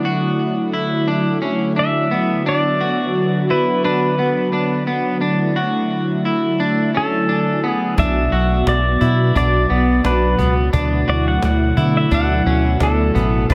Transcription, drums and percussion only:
7.98 cajon bass
8.67 cajon slap
9.01 cajon bass
9.36 cajon bass
10.05 cajon slap
10.39 cajon bass
10.73 cajon bass
11.42 cajon slap
11.77 cajon bass
12.11 cajon bass
12.80 cajon slap
13.16 cajon bass
13.50 cajon bass

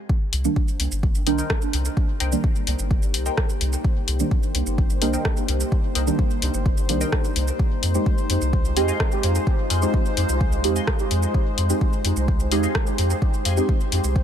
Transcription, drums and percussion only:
0.09 kick
0.33 open hi-hat
0.45 shaker
0.56 kick
0.68 shaker
0.80 open hi-hat
0.92 shaker
1.03 kick
1.15 shaker
1.27 open hi-hat
1.38 shaker
1.50 kick, cross-stick
1.62 shaker
1.73 open hi-hat
1.85 shaker
1.97 kick
2.20 open hi-hat
2.32 shaker
2.44 kick
2.56 shaker
2.67 open hi-hat
2.79 shaker
2.91 kick
3.02 shaker
3.14 open hi-hat
3.26 shaker
3.37 kick, cross-stick
3.49 shaker
3.61 open hi-hat
3.73 shaker
3.84 kick
4.08 open hi-hat
4.20 shaker
4.31 kick
4.43 shaker
4.55 open hi-hat
4.67 shaker
4.78 kick
4.90 shaker
5.02 open hi-hat
5.13 shaker
5.25 kick, cross-stick
5.37 shaker
5.48 open hi-hat
5.60 shaker
5.72 kick
5.95 open hi-hat
6.07 shaker
6.19 kick
6.31 shaker
6.42 open hi-hat
6.54 shaker
6.66 kick
6.77 shaker
6.89 open hi-hat
7.01 shaker
7.12 kick, cross-stick
7.24 shaker
7.36 open hi-hat
7.48 shaker
7.59 kick
7.83 open hi-hat
7.95 shaker
8.06 kick
8.18 shaker
8.30 open hi-hat
8.41 shaker
8.53 kick
8.65 shaker
8.77 open hi-hat
8.88 shaker
9.00 kick, cross-stick
9.12 shaker
9.23 open hi-hat
9.35 shaker
9.47 kick
9.70 open hi-hat
9.82 shaker
9.94 kick
10.05 shaker
10.17 open hi-hat
10.29 shaker
10.41 kick
10.52 shaker
10.64 open hi-hat
10.76 shaker
10.87 kick, cross-stick
10.99 shaker
11.11 open hi-hat
11.23 shaker
11.34 kick
11.58 open hi-hat
11.70 shaker
11.81 kick
11.93 shaker
12.05 open hi-hat
12.16 shaker
12.28 kick
12.40 shaker
12.52 open hi-hat
12.63 shaker
12.75 kick, cross-stick
12.87 shaker
12.98 open hi-hat
13.10 shaker
13.22 kick
13.34 shaker
13.45 open hi-hat
13.57 shaker
13.69 kick
13.81 shaker
13.92 open hi-hat
14.04 shaker
14.16 kick

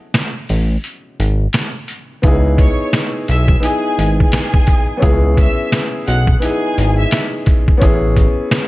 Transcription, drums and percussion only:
0.14 snare, closed hi-hat
0.49 open hi-hat
0.84 closed hi-hat
1.20 closed hi-hat
1.53 snare, closed hi-hat
1.88 closed hi-hat
2.23 kick, closed hi-hat
2.58 kick, closed hi-hat
2.93 snare, closed hi-hat
3.28 closed hi-hat
3.48 kick
3.63 closed hi-hat
3.99 closed hi-hat
4.20 kick
4.32 snare, closed hi-hat
4.54 kick
4.67 kick, closed hi-hat
5.02 kick, closed hi-hat
5.37 kick, closed hi-hat
5.72 snare, closed hi-hat
6.08 closed hi-hat
6.27 kick
6.42 closed hi-hat
6.78 closed hi-hat
7.11 snare, closed hi-hat
7.46 kick, closed hi-hat
7.68 kick
7.81 kick, closed hi-hat
8.17 kick, closed hi-hat
8.51 snare, closed hi-hat

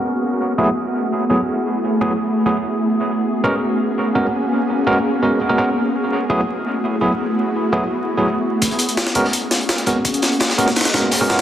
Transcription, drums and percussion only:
8.62 kick, closed hi-hat
8.71 closed hi-hat
8.79 closed hi-hat
8.89 closed hi-hat
8.97 snare, closed hi-hat
9.07 snare
9.15 kick, closed hi-hat
9.25 snare
9.33 closed hi-hat
9.51 snare, closed hi-hat
9.61 closed hi-hat
9.69 snare, closed hi-hat
9.78 snare, closed hi-hat
9.86 kick, closed hi-hat
10.05 kick, closed hi-hat
10.14 closed hi-hat
10.22 snare, closed hi-hat
10.32 closed hi-hat
10.40 snare, closed hi-hat, open hi-hat
10.50 snare
10.59 closed hi-hat
10.68 snare
10.76 snare, closed hi-hat
10.81 snare, closed hi-hat
10.85 snare, closed hi-hat
10.94 snare, closed hi-hat
11.11 snare, closed hi-hat, open hi-hat
11.21 snare
11.30 snare, closed hi-hat

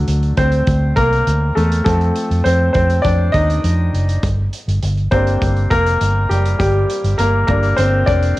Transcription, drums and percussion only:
0.08 closed hi-hat
0.23 closed hi-hat
0.37 kick, closed hi-hat
0.52 closed hi-hat
0.67 kick, closed hi-hat
0.97 kick, closed hi-hat
1.13 closed hi-hat
1.27 closed hi-hat
1.57 closed hi-hat
1.72 closed hi-hat
1.86 kick, closed hi-hat
2.01 closed hi-hat
2.16 closed hi-hat
2.31 closed hi-hat
2.46 closed hi-hat
2.74 kick, closed hi-hat
2.90 closed hi-hat
3.05 kick, closed hi-hat
3.34 kick, closed hi-hat
3.50 closed hi-hat
3.64 closed hi-hat
3.94 closed hi-hat
4.09 closed hi-hat
4.23 kick, closed hi-hat
4.53 closed hi-hat
4.69 closed hi-hat
4.83 closed hi-hat
4.97 closed hi-hat
5.12 kick, closed hi-hat
5.27 closed hi-hat
5.42 kick, closed hi-hat
5.57 closed hi-hat
5.71 kick, closed hi-hat
5.86 closed hi-hat
6.01 closed hi-hat
6.31 closed hi-hat
6.45 closed hi-hat
6.60 kick, closed hi-hat
6.90 closed hi-hat
7.04 closed hi-hat
7.19 closed hi-hat
7.48 kick, closed hi-hat
7.63 closed hi-hat
7.78 closed hi-hat
8.08 kick, closed hi-hat
8.23 closed hi-hat

